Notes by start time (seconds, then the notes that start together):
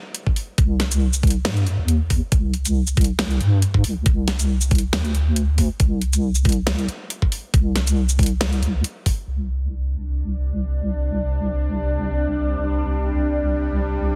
0.15 closed hi-hat
0.27 kick
0.36 open hi-hat
0.58 C2, kick, closed hi-hat
0.80 snare, closed hi-hat
0.92 closed hi-hat, shaker
1.13 shaker
1.23 kick, closed hi-hat
1.27 closed hi-hat
1.30 closed hi-hat
1.45 G2, snare, closed hi-hat
1.57 closed hi-hat
1.67 closed hi-hat
1.79 D#2
1.88 closed hi-hat
2.10 kick, open hi-hat
2.32 C2, kick, closed hi-hat
2.54 closed hi-hat
2.65 closed hi-hat, shaker
2.87 shaker
2.97 kick, closed hi-hat
3.01 closed hi-hat
3.04 closed hi-hat
3.19 snare, closed hi-hat
3.31 closed hi-hat
3.41 G2, closed hi-hat
3.62 closed hi-hat
3.74 kick
3.84 C2, open hi-hat
4.06 C2, kick, closed hi-hat
4.28 snare, closed hi-hat
4.39 closed hi-hat, shaker
4.61 shaker
4.71 kick, closed hi-hat
4.75 closed hi-hat
4.78 closed hi-hat
4.93 D2, snare, closed hi-hat
5.05 closed hi-hat
5.15 closed hi-hat
5.36 closed hi-hat
5.58 kick, open hi-hat
5.80 C2, kick, closed hi-hat
6.01 closed hi-hat
6.13 closed hi-hat, shaker
6.35 shaker
6.45 kick, closed hi-hat
6.49 closed hi-hat
6.52 closed hi-hat
6.67 snare, closed hi-hat
6.79 closed hi-hat
6.88 closed hi-hat
7.10 closed hi-hat
7.22 kick
7.32 open hi-hat
7.54 C2, kick, closed hi-hat
7.76 snare, closed hi-hat
7.87 closed hi-hat, shaker
8.09 shaker
8.19 kick, closed hi-hat, open hi-hat
8.26 closed hi-hat
8.41 snare, closed hi-hat
8.53 closed hi-hat
8.62 C2, closed hi-hat
8.84 closed hi-hat
9.06 kick, open hi-hat
9.28 C2 C3 G3 D4